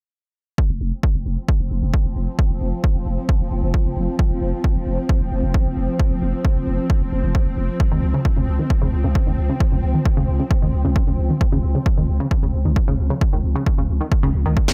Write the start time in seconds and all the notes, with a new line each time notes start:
0.58 F3 C4, kick
0.70 F1
0.81 F1
1.03 kick
1.15 F1
1.26 F1
1.49 kick
1.60 F1
1.71 F1
1.82 F1
1.94 kick
2.05 F1
2.16 F1
2.39 kick
2.50 F1
2.61 F1
2.84 kick
2.95 F1
3.06 F1
3.29 kick
3.40 F1
3.51 F1
3.63 F1
3.74 kick
3.86 F1
3.97 F1
4.19 kick
4.31 F1
4.42 F1
4.64 kick
4.76 F1
4.87 F1
5.09 kick
5.21 F1
5.32 F1
5.43 F1
5.54 kick
5.66 F1
5.77 F1
6.00 kick
6.11 F1
6.22 F1
6.45 kick
6.56 F1
6.67 F1
6.90 kick
7.01 F1
7.12 F1
7.24 F1
7.35 kick
7.46 F1
7.57 F1
7.80 kick
7.91 C#2 D#3
8.02 C#2
8.14 C#3
8.25 kick
8.36 C#2 C#3
8.47 C#2
8.59 D#3
8.70 kick
8.82 C#2 C#3
8.93 C#2
9.04 C#2 C#3
9.15 kick
9.27 C#2 D#3
9.38 C#2
9.49 C#3
9.60 kick
9.72 C#2 C#3
9.83 C#2
9.94 D#3
10.05 kick
10.17 C#2 C#3
10.28 C#2
10.40 C#3
10.51 kick
10.62 C#2 D#3
10.73 C#2
10.85 C#2 C#3
10.96 kick
11.07 C#2 C#3
11.18 C#2
11.30 D#3
11.41 kick
11.52 C#2 C#3
11.63 C#2
11.75 C#3
11.86 kick
11.97 C#2 D#3
12.08 C#2
12.20 C#3
12.31 kick
12.43 C#2 C#3
12.54 C#2
12.65 C#2 D#3
12.76 kick
12.88 C#2 C#3
12.99 C#2
13.10 C#3
13.21 kick
13.33 C#2 D#3
13.44 C#2
13.55 C#3
13.66 kick
13.78 C#2 C#3
13.89 C#2
14.01 D#3
14.12 kick
14.23 C#2 C#3
14.34 C#2
14.46 C#2 D#3
14.57 kick
14.68 C#2 C#3, snare